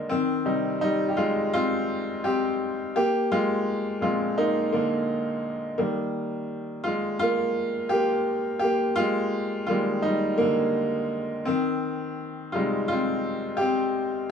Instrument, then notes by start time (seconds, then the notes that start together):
upright piano
Already playing: D3 D#3 G3 G#3 A#3 D#4 F4
0.09 D#3 C4
0.45 C3 G3 D#4
0.81 G3 D#4
1.09 G4
1.17 G#3 F4
1.53 C4 F4
2.24 C4 G4
2.96 A#3 G4
3.32 G#3 F4
4.01 A#2 F3 G#3 C4 F4
4.38 A#3 D#4
4.72 D3 A#3
5.79 D#3 G3 A#3
6.84 G#3 F4
7.19 A#3 F4
7.89 A#3 G4
8.59 G4
8.64 A#3
8.96 F4
9.00 G#3
9.67 D#3 G3 G#3 A#3 F4
10.02 G3 D#4
10.38 D3 A#3
11.45 D#3 C4
12.52 C3 G3 G#3 D#4 F4
12.88 F4
12.93 C4
13.57 G4
13.61 C4